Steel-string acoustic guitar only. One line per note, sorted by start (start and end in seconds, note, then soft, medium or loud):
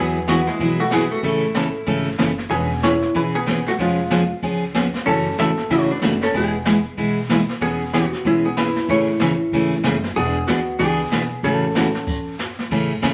0.00 0.16 E3 medium
0.00 0.17 F#3 medium
0.00 0.17 B3 medium
0.00 0.17 E4 medium
0.00 0.17 G#4 medium
0.28 0.39 E3 medium
0.28 0.39 F#3 medium
0.28 0.39 B3 medium
0.28 0.40 E4 medium
0.28 0.40 G#4 medium
0.60 0.80 E3 medium
0.60 0.80 F#3 medium
0.60 0.81 B3 medium
0.60 0.81 E4 medium
0.60 0.81 G#4 medium
0.92 1.03 E3 medium
0.92 1.03 F#3 medium
0.92 1.03 B3 medium
0.92 1.03 E4 medium
0.92 1.03 G#4 medium
1.23 1.44 C#3 medium
1.23 1.44 E3 medium
1.23 1.44 A3 medium
1.23 1.44 C#4 medium
1.23 1.44 A4 medium
1.55 1.66 C#3 medium
1.55 1.66 E3 medium
1.55 1.66 A3 medium
1.55 1.67 C#4 medium
1.55 1.67 A4 medium
1.86 2.07 C#3 medium
1.86 2.07 E3 medium
1.86 2.08 A3 medium
1.86 2.08 C#4 medium
1.86 2.08 A4 medium
2.18 2.30 C#3 medium
2.18 2.30 E3 medium
2.18 2.30 A3 medium
2.18 2.30 C#4 medium
2.18 2.30 A4 medium
2.50 2.71 E3 medium
2.50 2.71 B3 medium
2.50 2.71 C#4 soft
2.50 2.72 G#4 medium
2.83 2.94 E3 medium
2.83 2.94 B3 medium
2.83 2.94 C#4 medium
2.83 2.94 G#4 medium
3.15 3.35 E3 medium
3.15 3.35 B3 medium
3.15 3.36 C#4 medium
3.15 3.36 G#4 medium
3.46 3.58 E3 medium
3.46 3.58 B3 medium
3.46 3.58 C#4 medium
3.46 3.58 G#4 medium
3.79 3.99 F3 medium
3.79 3.99 B3 medium
3.79 4.00 C#4 medium
3.79 4.00 G#4 medium
4.10 4.22 F3 medium
4.10 4.22 B3 medium
4.10 4.22 C#4 medium
4.10 4.22 G#4 medium
4.42 4.63 F3 medium
4.42 4.63 B3 medium
4.42 4.63 C#4 medium
4.42 4.63 G#4 medium
4.75 4.85 F3 medium
4.75 4.86 B3 medium
4.75 4.86 C#4 medium
4.75 4.86 G#4 medium
5.07 5.27 C#3 medium
5.07 5.27 E3 medium
5.07 5.27 A3 medium
5.07 5.27 C#4 medium
5.07 5.27 F#4 medium
5.39 5.49 C#3 medium
5.39 5.50 E3 medium
5.39 5.50 A3 medium
5.39 5.50 C#4 medium
5.39 5.50 F#4 medium
5.70 5.90 C#3 medium
5.70 5.91 E3 medium
5.70 5.91 A3 medium
5.70 5.91 C#4 medium
5.70 5.91 F#4 medium
6.02 6.13 C#3 medium
6.02 6.13 E3 medium
6.02 6.13 A3 medium
6.02 6.13 C#4 medium
6.02 6.13 F#4 medium
6.34 6.54 E3 medium
6.34 6.54 G#3 medium
6.34 6.54 B3 medium
6.34 6.55 E4 medium
6.34 6.55 G#4 medium
6.66 6.77 E3 medium
6.66 6.77 G#3 medium
6.66 6.77 B3 medium
6.66 6.77 E4 medium
6.66 6.77 G#4 medium
6.97 7.18 E3 medium
6.97 7.18 G#3 medium
6.97 7.18 B3 medium
6.97 7.18 E4 medium
6.97 7.18 G#4 medium
7.30 7.41 E3 medium
7.30 7.41 G#3 medium
7.30 7.41 B3 medium
7.30 7.41 E4 medium
7.30 7.41 G#4 medium
7.61 7.81 E3 medium
7.61 7.82 B3 medium
7.61 7.82 C#4 medium
7.61 7.82 G#4 medium
7.93 8.04 E3 medium
7.93 8.04 B3 medium
7.93 8.05 C#4 medium
7.93 8.05 G#4 medium
8.25 8.45 E3 medium
8.25 8.45 B3 medium
8.25 8.46 C#4 medium
8.25 8.46 G#4 medium
8.57 8.68 E3 medium
8.57 8.68 B3 medium
8.57 8.68 C#4 medium
8.57 8.68 G#4 medium
8.89 9.09 C#3 medium
8.89 9.09 E3 medium
8.89 9.09 A3 medium
8.89 9.09 C#4 medium
8.89 9.10 G#4 medium
9.21 9.32 C#3 medium
9.21 9.32 E3 medium
9.21 9.32 A3 medium
9.21 9.32 C#4 medium
9.21 9.32 G#4 medium
9.53 9.73 C#3 medium
9.53 9.73 E3 medium
9.53 9.73 A3 medium
9.53 9.73 C#4 medium
9.53 9.73 G#4 medium
9.83 9.95 C#3 medium
9.83 9.95 E3 medium
9.83 9.95 A3 medium
9.83 9.95 C#4 medium
9.83 9.95 G#4 medium
10.16 10.36 E3 medium
10.16 10.36 B3 medium
10.16 10.37 D4 medium
10.16 10.37 G#4 medium
10.48 10.59 E3 medium
10.48 10.59 B3 medium
10.48 10.59 D4 medium
10.48 10.59 G#4 medium
10.79 11.00 E3 medium
10.79 11.00 B3 medium
10.79 11.00 D4 medium
10.79 11.00 G#4 medium
11.11 11.22 E3 medium
11.11 11.23 B3 medium
11.11 11.23 D4 medium
11.11 11.23 G#4 medium
11.44 11.64 C#3 medium
11.44 11.64 E3 medium
11.44 11.64 A3 medium
11.44 11.64 C#4 medium
11.44 11.65 F#4 medium
11.76 11.86 C#3 medium
11.76 11.87 E3 medium
11.76 11.87 A3 medium
11.76 11.87 C#4 medium
11.76 11.87 F#4 medium
12.71 12.91 C#3 medium
12.71 12.91 E3 medium
12.71 12.91 A3 medium
12.71 12.92 C#4 medium
12.71 12.92 G#4 medium
13.02 13.13 C#3 medium
13.02 13.13 E3 medium
13.02 13.13 A3 medium
13.02 13.14 C#4 medium
13.02 13.14 G#4 medium